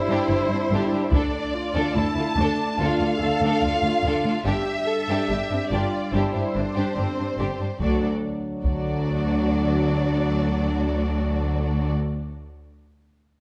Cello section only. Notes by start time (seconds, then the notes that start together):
0.08 G2
0.28 G2
0.48 G2
0.70 G2
0.91 G2
1.11 D2
1.75 D2
1.95 D2
2.16 D2
2.36 D2
2.78 D2
3.00 D2
3.20 D2
3.41 D2
3.62 D2
3.82 D2
4.02 D2
4.24 D2
4.45 G2
5.08 G2
5.29 G2
5.50 G2
5.71 G2
6.13 G2
6.34 G2
6.55 G2
6.76 G2
6.97 G2
7.18 G2
7.40 G2
7.60 G2
7.81 D2
8.64 D2